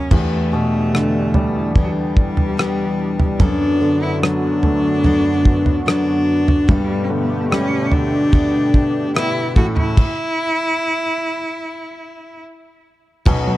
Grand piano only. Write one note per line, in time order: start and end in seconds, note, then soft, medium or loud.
0.00 0.13 F#2 medium
0.00 0.13 F#3 soft
0.00 0.13 A#3 soft
0.00 0.13 C#4 soft
0.11 3.36 E2 medium
0.53 2.13 B2 soft
0.94 2.54 D3 medium
1.35 2.95 G3 medium
3.40 6.65 F#2 medium
3.82 5.42 D3 soft
4.23 5.83 F#3 soft
4.64 6.24 A3 soft
6.70 9.53 G2 medium
7.10 7.91 D3 soft
7.52 9.12 G3 medium
7.93 9.53 D3 medium
9.57 9.96 A2 medium
13.26 13.57 B1 medium
13.26 13.57 B2 medium
13.47 13.57 F#3 soft